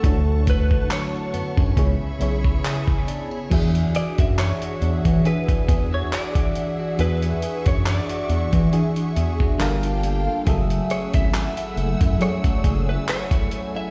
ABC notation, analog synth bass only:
X:1
M:4/4
L:1/16
Q:"Swing 16ths" 1/4=69
K:Emix
V:1 name="Analog synth bass" clef=bass
D,,4 z2 F,, F,, C,, B,,, B,,,2 z4 | E,,2 z F,,2 z E,, E, z2 E,,2 z4 | E,,2 z F,,2 z E,, E, z2 E,,2 =G,,,4 | F,,,2 z G,,,2 z F,,, F,, z2 F,,,2 z4 |]